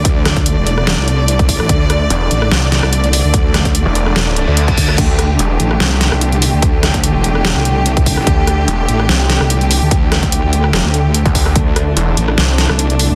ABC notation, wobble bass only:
X:1
M:4/4
L:1/16
Q:"Swing 16ths" 1/4=146
K:Cmix
V:1 name="Wobble bass" clef=bass
D,,3 D,,2 E,,,4 C,,6 A,,, | D,,4 z2 A,,,2 z3 C,,4 D,,- | D,,3 D,,2 z8 z D,,2 | D,,4 z2 A,,,2 z3 C,,4 D,,- |
D,,3 D,,2 E,,,4 C,,6 A,,, | D,,4 z2 A,,,2 z3 C,,4 D,,- | D,,3 D,,2 D,,3 z D,,4 z3 | D,,4 z2 A,,,2 z3 C,,4 D,, |]